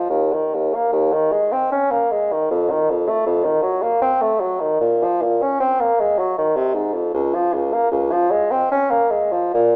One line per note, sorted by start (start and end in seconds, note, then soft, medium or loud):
0.10 0.35 D#2 medium
0.33 0.56 D#3 soft
0.55 0.76 D#2 soft
0.74 0.92 A#3 medium
0.92 1.14 D#2 medium
1.13 1.34 D#3 medium
1.32 1.53 G#3 medium
1.52 1.70 C4 medium
1.72 1.93 C#4 medium
1.91 2.13 A#3 medium
2.11 2.34 G#3 medium
2.32 2.50 D#3 medium
2.51 2.72 F2 medium
2.70 2.92 D#3 medium
2.90 3.10 F2 medium
3.08 3.26 A3 medium
3.26 3.46 F2 medium
3.44 3.64 D#3 medium
3.62 3.84 F#3 medium
3.83 4.01 A#3 medium
4.02 4.23 C4 medium
4.22 4.42 A3 medium
4.41 4.62 F#3 medium
4.60 4.80 D#3 soft
4.81 5.05 A#2 medium
5.03 5.24 F3 medium
5.22 5.43 A#2 medium
5.42 5.60 C#4 medium
5.60 5.82 C4 medium
5.81 6.01 A#3 medium
6.00 6.20 G#3 medium
6.19 6.37 F#3 medium
6.38 6.58 D#3 medium
6.56 6.76 C3 medium
6.75 6.95 G#2 medium
6.94 7.13 F2 soft
7.14 7.36 C#2 medium
7.34 7.56 F3 medium
7.54 7.75 C#2 medium
7.73 7.91 A#3 medium
7.91 8.13 C#2 medium
8.12 8.32 F3 medium
8.31 8.53 G#3 medium
8.51 8.71 C4 medium
8.71 8.92 C#4 medium
8.91 9.12 A#3 medium
9.11 9.33 G#3 medium
9.32 9.52 F3 medium
9.54 9.76 A#2 medium